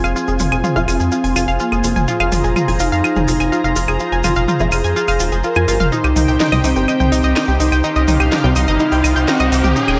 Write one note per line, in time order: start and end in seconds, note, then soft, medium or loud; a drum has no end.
0.00 0.78 C4 loud
0.00 5.88 F4 medium
0.00 5.88 G#4 medium
0.00 9.72 C5 medium
0.00 0.11 F5 loud
0.00 2.04 G#5 medium
0.04 0.14 F1 medium
0.04 claves soft
0.04 maracas soft
0.16 0.27 F4 loud
0.16 maracas medium
0.28 0.38 F1 medium
0.28 0.32 G#4 medium
0.28 maracas soft
0.39 0.50 F1 medium
0.39 0.44 F4 medium
0.39 mid tom medium
0.39 open hi-hat loud
0.39 maracas medium
0.52 0.62 F1 medium
0.52 0.56 G#5 medium
0.52 claves medium
0.52 maracas soft
0.64 0.71 F4 loud
0.64 mid tom medium
0.64 maracas soft
0.76 0.86 F1 medium
0.76 2.65 F3 loud
0.76 2.65 C4 medium
0.76 2.65 F4 loud
0.76 0.83 F5 loud
0.76 maracas soft
0.88 0.98 F1 loud
0.88 1.50 C4 medium
0.88 0.99 F4 loud
0.88 open hi-hat loud
0.88 claves soft
0.88 maracas medium
1.00 1.10 F2 medium
1.00 1.04 G#4 medium
1.00 maracas soft
1.12 1.16 F4 medium
1.12 maracas medium
1.24 1.34 F1 medium
1.24 1.28 G#5 medium
1.24 open hi-hat medium
1.24 maracas soft
1.36 1.46 F1 loud
1.36 1.43 F4 loud
1.36 open hi-hat loud
1.36 claves medium
1.36 maracas medium
1.48 1.58 F1 medium
1.48 1.55 F5 loud
1.48 maracas soft
1.60 2.04 A#3 medium
1.60 1.71 F4 loud
1.60 maracas soft
1.72 1.82 F1 medium
1.72 1.76 G#4 medium
1.72 claves soft
1.72 maracas soft
1.84 1.94 F1 loud
1.84 1.88 F4 medium
1.84 open hi-hat loud
1.84 maracas medium
1.96 2.06 F1 medium
1.96 2.00 G#5 medium
1.96 mid tom medium
1.96 maracas soft
2.08 2.70 F4 loud
2.08 2.15 F4 loud
2.08 5.88 A#5 medium
2.08 maracas medium
2.20 2.30 F1 medium
2.20 2.27 F5 loud
2.20 claves medium
2.20 maracas soft
2.32 2.42 F1 loud
2.32 2.43 F4 loud
2.32 mid tom medium
2.32 open hi-hat loud
2.32 maracas medium
2.44 2.54 F1 medium
2.44 2.48 G#4 medium
2.44 maracas soft
2.56 2.60 F4 medium
2.56 mid tom medium
2.56 claves soft
2.56 maracas medium
2.68 2.78 F1 medium
2.68 4.57 F3 medium
2.68 4.57 C4 medium
2.68 4.57 F4 medium
2.68 2.72 G#5 medium
2.68 open hi-hat medium
2.68 maracas soft
2.80 2.90 F1 loud
2.80 3.78 D#4 loud
2.80 2.87 F4 loud
2.80 open hi-hat loud
2.80 maracas medium
2.92 3.02 F2 medium
2.92 2.99 F5 loud
2.92 maracas soft
3.04 3.15 F4 loud
3.04 claves medium
3.04 maracas soft
3.16 3.26 F1 medium
3.16 3.20 G#4 medium
3.16 mid tom medium
3.16 maracas soft
3.28 3.38 F1 loud
3.28 3.32 F4 medium
3.28 open hi-hat loud
3.28 maracas loud
3.40 3.50 F1 medium
3.40 3.44 G#5 medium
3.40 claves medium
3.40 maracas soft
3.52 3.59 F4 loud
3.52 maracas medium
3.64 3.74 F1 medium
3.64 3.71 F5 loud
3.64 maracas soft
3.76 3.86 F1 loud
3.76 4.63 F4 loud
3.76 3.87 F4 loud
3.76 open hi-hat loud
3.76 maracas loud
3.88 3.98 F1 medium
3.88 3.92 G#4 medium
3.88 claves medium
3.88 maracas soft
4.00 4.04 F4 medium
4.00 maracas medium
4.12 4.22 F1 medium
4.12 4.16 G#5 medium
4.12 maracas soft
4.24 4.34 F1 loud
4.24 4.31 F4 loud
4.24 mid tom medium
4.24 open hi-hat loud
4.24 claves medium
4.24 maracas medium
4.36 4.46 F1 medium
4.36 4.43 F5 loud
4.36 maracas soft
4.48 4.59 F4 loud
4.48 mid tom medium
4.48 maracas medium
4.60 4.70 F1 medium
4.60 5.54 F3 loud
4.60 5.54 C4 medium
4.60 5.54 F4 loud
4.60 4.64 G#4 medium
4.60 maracas soft
4.72 4.82 F1 loud
4.72 4.76 F4 medium
4.72 5.35 G#4 loud
4.72 open hi-hat loud
4.72 claves medium
4.72 maracas loud
4.84 4.94 F2 medium
4.84 4.88 G#5 medium
4.84 maracas soft
4.96 5.03 F4 loud
4.96 maracas medium
5.08 5.18 F1 medium
5.08 5.15 F5 loud
5.08 open hi-hat medium
5.08 claves medium
5.08 maracas soft
5.20 5.30 D#1 loud
5.20 5.31 F4 loud
5.20 open hi-hat loud
5.20 maracas medium
5.32 5.42 F1 medium
5.32 5.36 G#4 medium
5.32 maracas soft
5.44 5.48 F4 medium
5.44 5.88 A#4 medium
5.44 maracas medium
5.55 5.66 F2 medium
5.55 5.70 F3 medium
5.55 5.70 C4 medium
5.55 5.70 F4 medium
5.55 5.60 G#5 medium
5.55 claves medium
5.55 maracas soft
5.68 5.78 G1 loud
5.68 5.75 F4 loud
5.68 open hi-hat loud
5.68 maracas loud
5.80 5.90 F1 medium
5.80 5.87 F5 loud
5.80 mid tom medium
5.80 maracas soft
5.92 6.54 D#4 loud
5.92 10.00 D#4 medium
5.92 6.03 D#4 loud
5.92 9.72 G4 medium
5.92 7.82 G5 medium
5.92 riser medium
5.92 maracas medium
6.04 6.14 C2 medium
6.04 6.08 G4 medium
6.04 claves medium
6.04 maracas soft
6.16 6.26 C2 loud
6.16 6.20 D#4 medium
6.16 mid tom medium
6.16 open hi-hat loud
6.16 maracas medium
6.28 6.38 C2 medium
6.28 6.32 G5 medium
6.28 maracas soft
6.40 6.47 D#4 loud
6.40 snare loud
6.40 mid tom medium
6.40 maracas medium
6.52 6.62 C2 medium
6.52 8.41 C3 medium
6.52 8.41 G3 medium
6.52 8.41 C4 medium
6.52 6.59 D#5 loud
6.52 open hi-hat medium
6.52 claves medium
6.52 maracas soft
6.64 6.74 C2 loud
6.64 7.51 C4 loud
6.64 6.75 D#4 loud
6.64 open hi-hat loud
6.64 maracas medium
6.76 6.86 G1 medium
6.76 6.80 G4 medium
6.76 maracas soft
6.88 6.92 D#4 medium
6.88 claves medium
6.88 maracas medium
7.00 7.10 C2 medium
7.00 7.04 G5 medium
7.00 mid tom medium
7.00 maracas soft
7.12 7.22 C2 loud
7.12 7.19 D#4 loud
7.12 open hi-hat loud
7.12 maracas loud
7.23 7.34 C2 medium
7.23 7.31 D#5 loud
7.23 maracas soft
7.36 7.47 D#4 loud
7.36 snare loud
7.36 claves medium
7.36 maracas medium
7.48 7.58 C2 medium
7.48 7.52 G4 medium
7.48 maracas soft
7.60 7.70 C2 loud
7.60 8.46 D#4 loud
7.60 7.64 D#4 medium
7.60 open hi-hat loud
7.60 maracas medium
7.72 7.82 C2 medium
7.72 7.76 G5 medium
7.72 claves medium
7.72 maracas soft
7.84 7.91 D#4 loud
7.84 9.74 F5 medium
7.84 maracas soft
7.96 8.06 C2 medium
7.96 8.03 D#5 loud
7.96 maracas soft
8.08 8.18 C2 loud
8.08 8.19 D#4 loud
8.08 mid tom medium
8.08 open hi-hat loud
8.08 maracas medium
8.20 8.30 C2 medium
8.20 8.24 G4 medium
8.20 claves medium
8.20 maracas soft
8.32 8.36 D#4 medium
8.32 snare loud
8.32 mid tom medium
8.32 maracas soft
8.44 8.54 C2 medium
8.44 9.75 C3 loud
8.44 9.75 G3 medium
8.44 9.75 C4 loud
8.44 8.48 G5 medium
8.44 maracas soft
8.56 8.66 C2 loud
8.56 9.29 D#4 loud
8.56 8.63 D#4 loud
8.56 open hi-hat loud
8.56 claves medium
8.56 maracas medium
8.68 8.78 G1 medium
8.68 8.75 D#5 loud
8.68 maracas soft
8.79 8.91 D#4 loud
8.79 maracas soft
8.91 9.02 C2 medium
8.91 8.96 G4 medium
8.91 open hi-hat medium
8.91 maracas soft
9.04 9.14 C2 loud
9.04 9.08 D#4 medium
9.04 open hi-hat loud
9.04 claves medium
9.04 maracas medium
9.16 9.26 C2 medium
9.16 9.20 G5 medium
9.16 maracas soft
9.28 9.77 C4 medium
9.28 9.35 D#4 loud
9.28 snare loud
9.28 maracas soft
9.39 9.50 C2 medium
9.39 9.47 D#5 loud
9.39 claves medium
9.39 maracas soft
9.52 9.62 C2 loud
9.52 9.63 D#4 loud
9.52 open hi-hat loud
9.52 maracas medium
9.64 9.74 C2 medium
9.64 9.68 G4 medium
9.64 mid tom medium
9.64 maracas soft
9.76 10.00 C#4 loud
9.76 9.80 D#4 medium
9.76 10.00 G4 medium
9.76 10.00 A#4 medium
9.76 10.00 G5 medium
9.76 maracas soft
9.88 9.98 D#1 medium
9.88 9.92 G5 medium
9.88 claves medium
9.88 maracas soft